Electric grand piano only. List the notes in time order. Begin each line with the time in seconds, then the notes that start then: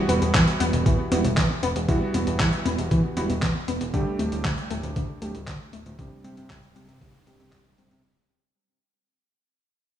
Already playing: G3 B3 E4 F#4
1.12 G3 B3 E4 F#4
1.89 G3 B3 E4 F#4
3.17 G3 B3 E4 F#4
3.94 G3 A3 D4 G4
5.22 G3 A3 D4 G4
5.99 G3 C4 D4 G4
7.27 G3 C4 D4 G4
7.53 G3 C4 D4 G4
7.65 G3 C4 D4 G4